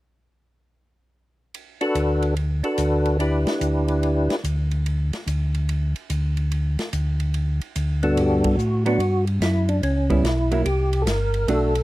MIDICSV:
0, 0, Header, 1, 5, 480
1, 0, Start_track
1, 0, Tempo, 414079
1, 1787, Time_signature, 4, 2, 24, 8
1, 13713, End_track
2, 0, Start_track
2, 0, Title_t, "Tonewheel organ"
2, 0, Program_c, 0, 16
2, 2097, Note_on_c, 0, 62, 52
2, 2102, Note_on_c, 0, 66, 46
2, 2111, Note_on_c, 0, 69, 44
2, 2119, Note_on_c, 0, 71, 55
2, 2714, Note_off_c, 0, 62, 0
2, 2716, Note_off_c, 0, 66, 0
2, 2721, Note_off_c, 0, 69, 0
2, 2725, Note_off_c, 0, 71, 0
2, 3053, Note_on_c, 0, 62, 45
2, 3062, Note_on_c, 0, 66, 41
2, 3067, Note_on_c, 0, 69, 46
2, 3074, Note_on_c, 0, 71, 49
2, 3673, Note_off_c, 0, 62, 0
2, 3677, Note_off_c, 0, 66, 0
2, 3680, Note_off_c, 0, 69, 0
2, 3683, Note_off_c, 0, 71, 0
2, 3700, Note_on_c, 0, 62, 39
2, 3713, Note_on_c, 0, 64, 38
2, 3715, Note_on_c, 0, 67, 38
2, 3722, Note_on_c, 0, 71, 45
2, 5047, Note_off_c, 0, 62, 0
2, 5053, Note_off_c, 0, 64, 0
2, 5055, Note_off_c, 0, 67, 0
2, 5058, Note_off_c, 0, 71, 0
2, 9304, Note_on_c, 0, 43, 49
2, 9305, Note_on_c, 0, 59, 46
2, 9310, Note_on_c, 0, 62, 49
2, 9319, Note_on_c, 0, 66, 42
2, 9320, Note_on_c, 0, 69, 57
2, 9502, Note_on_c, 0, 67, 69
2, 9798, Note_off_c, 0, 66, 0
2, 9810, Note_off_c, 0, 67, 0
2, 9812, Note_on_c, 0, 66, 68
2, 9919, Note_off_c, 0, 43, 0
2, 9919, Note_off_c, 0, 59, 0
2, 9922, Note_off_c, 0, 62, 0
2, 9927, Note_off_c, 0, 69, 0
2, 10246, Note_off_c, 0, 66, 0
2, 10285, Note_on_c, 0, 66, 83
2, 10722, Note_off_c, 0, 66, 0
2, 10919, Note_on_c, 0, 64, 66
2, 11230, Note_on_c, 0, 62, 60
2, 11238, Note_off_c, 0, 64, 0
2, 11383, Note_off_c, 0, 62, 0
2, 11398, Note_on_c, 0, 61, 69
2, 11867, Note_on_c, 0, 64, 69
2, 11889, Note_off_c, 0, 61, 0
2, 12315, Note_off_c, 0, 64, 0
2, 12353, Note_on_c, 0, 67, 77
2, 12773, Note_on_c, 0, 69, 57
2, 12787, Note_off_c, 0, 67, 0
2, 12823, Note_on_c, 0, 70, 75
2, 12829, Note_off_c, 0, 69, 0
2, 13304, Note_on_c, 0, 69, 79
2, 13320, Note_off_c, 0, 70, 0
2, 13713, Note_off_c, 0, 69, 0
2, 13713, End_track
3, 0, Start_track
3, 0, Title_t, "Hollow-body jazz guitar"
3, 0, Program_c, 1, 26
3, 10267, Note_on_c, 1, 54, 49
3, 10277, Note_on_c, 1, 59, 57
3, 10281, Note_on_c, 1, 62, 57
3, 10417, Note_off_c, 1, 54, 0
3, 10422, Note_off_c, 1, 59, 0
3, 10424, Note_off_c, 1, 62, 0
3, 11707, Note_on_c, 1, 55, 54
3, 11709, Note_on_c, 1, 59, 48
3, 11719, Note_on_c, 1, 64, 55
3, 11856, Note_off_c, 1, 55, 0
3, 11857, Note_off_c, 1, 59, 0
3, 11862, Note_off_c, 1, 64, 0
3, 12189, Note_on_c, 1, 54, 47
3, 12200, Note_on_c, 1, 58, 52
3, 12205, Note_on_c, 1, 64, 58
3, 12336, Note_off_c, 1, 54, 0
3, 12342, Note_off_c, 1, 58, 0
3, 12344, Note_off_c, 1, 64, 0
3, 13313, Note_on_c, 1, 57, 50
3, 13323, Note_on_c, 1, 62, 53
3, 13327, Note_on_c, 1, 66, 47
3, 13592, Note_off_c, 1, 57, 0
3, 13597, Note_off_c, 1, 62, 0
3, 13599, Note_off_c, 1, 66, 0
3, 13713, End_track
4, 0, Start_track
4, 0, Title_t, "Tonewheel organ"
4, 0, Program_c, 2, 16
4, 2259, Note_on_c, 2, 38, 64
4, 3045, Note_off_c, 2, 38, 0
4, 3222, Note_on_c, 2, 38, 73
4, 4007, Note_off_c, 2, 38, 0
4, 4181, Note_on_c, 2, 38, 66
4, 4967, Note_off_c, 2, 38, 0
4, 5144, Note_on_c, 2, 38, 72
4, 5929, Note_off_c, 2, 38, 0
4, 6103, Note_on_c, 2, 38, 71
4, 6889, Note_off_c, 2, 38, 0
4, 7067, Note_on_c, 2, 38, 70
4, 7851, Note_off_c, 2, 38, 0
4, 8033, Note_on_c, 2, 38, 69
4, 8814, Note_off_c, 2, 38, 0
4, 8990, Note_on_c, 2, 38, 67
4, 9469, Note_on_c, 2, 43, 61
4, 9772, Note_off_c, 2, 38, 0
4, 9937, Note_off_c, 2, 43, 0
4, 9941, Note_on_c, 2, 45, 76
4, 10412, Note_off_c, 2, 45, 0
4, 10419, Note_on_c, 2, 43, 69
4, 10891, Note_off_c, 2, 43, 0
4, 10904, Note_on_c, 2, 42, 85
4, 11373, Note_off_c, 2, 42, 0
4, 11387, Note_on_c, 2, 37, 62
4, 11854, Note_off_c, 2, 37, 0
4, 11863, Note_on_c, 2, 35, 81
4, 12332, Note_off_c, 2, 35, 0
4, 12341, Note_on_c, 2, 36, 71
4, 12810, Note_off_c, 2, 36, 0
4, 12818, Note_on_c, 2, 31, 83
4, 13288, Note_off_c, 2, 31, 0
4, 13306, Note_on_c, 2, 35, 66
4, 13713, Note_off_c, 2, 35, 0
4, 13713, End_track
5, 0, Start_track
5, 0, Title_t, "Drums"
5, 1789, Note_on_c, 9, 51, 44
5, 1905, Note_off_c, 9, 51, 0
5, 2097, Note_on_c, 9, 51, 36
5, 2213, Note_off_c, 9, 51, 0
5, 2263, Note_on_c, 9, 44, 41
5, 2263, Note_on_c, 9, 51, 46
5, 2379, Note_off_c, 9, 44, 0
5, 2379, Note_off_c, 9, 51, 0
5, 2578, Note_on_c, 9, 51, 34
5, 2694, Note_off_c, 9, 51, 0
5, 2741, Note_on_c, 9, 51, 37
5, 2857, Note_off_c, 9, 51, 0
5, 3056, Note_on_c, 9, 51, 32
5, 3172, Note_off_c, 9, 51, 0
5, 3217, Note_on_c, 9, 44, 49
5, 3217, Note_on_c, 9, 51, 46
5, 3333, Note_off_c, 9, 44, 0
5, 3333, Note_off_c, 9, 51, 0
5, 3540, Note_on_c, 9, 51, 30
5, 3656, Note_off_c, 9, 51, 0
5, 3707, Note_on_c, 9, 51, 42
5, 3823, Note_off_c, 9, 51, 0
5, 4018, Note_on_c, 9, 51, 35
5, 4023, Note_on_c, 9, 38, 46
5, 4134, Note_off_c, 9, 51, 0
5, 4139, Note_off_c, 9, 38, 0
5, 4186, Note_on_c, 9, 44, 46
5, 4186, Note_on_c, 9, 51, 43
5, 4302, Note_off_c, 9, 44, 0
5, 4302, Note_off_c, 9, 51, 0
5, 4500, Note_on_c, 9, 51, 33
5, 4616, Note_off_c, 9, 51, 0
5, 4670, Note_on_c, 9, 51, 39
5, 4786, Note_off_c, 9, 51, 0
5, 4985, Note_on_c, 9, 51, 34
5, 4990, Note_on_c, 9, 38, 33
5, 5101, Note_off_c, 9, 51, 0
5, 5106, Note_off_c, 9, 38, 0
5, 5151, Note_on_c, 9, 44, 42
5, 5151, Note_on_c, 9, 51, 48
5, 5267, Note_off_c, 9, 44, 0
5, 5267, Note_off_c, 9, 51, 0
5, 5463, Note_on_c, 9, 51, 31
5, 5579, Note_off_c, 9, 51, 0
5, 5633, Note_on_c, 9, 51, 40
5, 5749, Note_off_c, 9, 51, 0
5, 5948, Note_on_c, 9, 51, 34
5, 5953, Note_on_c, 9, 38, 27
5, 6064, Note_off_c, 9, 51, 0
5, 6069, Note_off_c, 9, 38, 0
5, 6113, Note_on_c, 9, 44, 45
5, 6113, Note_on_c, 9, 51, 48
5, 6229, Note_off_c, 9, 44, 0
5, 6229, Note_off_c, 9, 51, 0
5, 6427, Note_on_c, 9, 51, 33
5, 6543, Note_off_c, 9, 51, 0
5, 6594, Note_on_c, 9, 51, 47
5, 6710, Note_off_c, 9, 51, 0
5, 6904, Note_on_c, 9, 51, 34
5, 7020, Note_off_c, 9, 51, 0
5, 7068, Note_on_c, 9, 44, 41
5, 7068, Note_on_c, 9, 51, 51
5, 7184, Note_off_c, 9, 44, 0
5, 7184, Note_off_c, 9, 51, 0
5, 7382, Note_on_c, 9, 51, 34
5, 7498, Note_off_c, 9, 51, 0
5, 7552, Note_on_c, 9, 51, 44
5, 7668, Note_off_c, 9, 51, 0
5, 7868, Note_on_c, 9, 51, 37
5, 7873, Note_on_c, 9, 38, 36
5, 7984, Note_off_c, 9, 51, 0
5, 7989, Note_off_c, 9, 38, 0
5, 8030, Note_on_c, 9, 44, 42
5, 8030, Note_on_c, 9, 51, 48
5, 8146, Note_off_c, 9, 44, 0
5, 8146, Note_off_c, 9, 51, 0
5, 8343, Note_on_c, 9, 51, 35
5, 8459, Note_off_c, 9, 51, 0
5, 8508, Note_on_c, 9, 51, 44
5, 8624, Note_off_c, 9, 51, 0
5, 8825, Note_on_c, 9, 51, 34
5, 8941, Note_off_c, 9, 51, 0
5, 8990, Note_on_c, 9, 44, 44
5, 8990, Note_on_c, 9, 51, 55
5, 9106, Note_off_c, 9, 44, 0
5, 9106, Note_off_c, 9, 51, 0
5, 9305, Note_on_c, 9, 51, 34
5, 9421, Note_off_c, 9, 51, 0
5, 9473, Note_on_c, 9, 51, 50
5, 9589, Note_off_c, 9, 51, 0
5, 9785, Note_on_c, 9, 51, 65
5, 9790, Note_on_c, 9, 36, 70
5, 9900, Note_off_c, 9, 51, 0
5, 9906, Note_off_c, 9, 36, 0
5, 9953, Note_on_c, 9, 44, 51
5, 10069, Note_off_c, 9, 44, 0
5, 10269, Note_on_c, 9, 51, 41
5, 10385, Note_off_c, 9, 51, 0
5, 10433, Note_on_c, 9, 51, 44
5, 10549, Note_off_c, 9, 51, 0
5, 10748, Note_on_c, 9, 51, 37
5, 10864, Note_off_c, 9, 51, 0
5, 10916, Note_on_c, 9, 44, 46
5, 10916, Note_on_c, 9, 51, 55
5, 10920, Note_on_c, 9, 38, 58
5, 11032, Note_off_c, 9, 44, 0
5, 11032, Note_off_c, 9, 51, 0
5, 11036, Note_off_c, 9, 38, 0
5, 11227, Note_on_c, 9, 51, 39
5, 11343, Note_off_c, 9, 51, 0
5, 11396, Note_on_c, 9, 51, 44
5, 11512, Note_off_c, 9, 51, 0
5, 11709, Note_on_c, 9, 36, 49
5, 11709, Note_on_c, 9, 51, 41
5, 11825, Note_off_c, 9, 36, 0
5, 11825, Note_off_c, 9, 51, 0
5, 11878, Note_on_c, 9, 44, 48
5, 11878, Note_on_c, 9, 51, 54
5, 11882, Note_on_c, 9, 38, 56
5, 11993, Note_off_c, 9, 44, 0
5, 11993, Note_off_c, 9, 51, 0
5, 11998, Note_off_c, 9, 38, 0
5, 12188, Note_on_c, 9, 51, 42
5, 12304, Note_off_c, 9, 51, 0
5, 12352, Note_on_c, 9, 51, 52
5, 12468, Note_off_c, 9, 51, 0
5, 12667, Note_on_c, 9, 51, 38
5, 12783, Note_off_c, 9, 51, 0
5, 12831, Note_on_c, 9, 44, 58
5, 12831, Note_on_c, 9, 51, 62
5, 12835, Note_on_c, 9, 38, 56
5, 12947, Note_off_c, 9, 44, 0
5, 12947, Note_off_c, 9, 51, 0
5, 12951, Note_off_c, 9, 38, 0
5, 13142, Note_on_c, 9, 51, 37
5, 13258, Note_off_c, 9, 51, 0
5, 13309, Note_on_c, 9, 51, 52
5, 13425, Note_off_c, 9, 51, 0
5, 13623, Note_on_c, 9, 51, 43
5, 13713, Note_off_c, 9, 51, 0
5, 13713, End_track
0, 0, End_of_file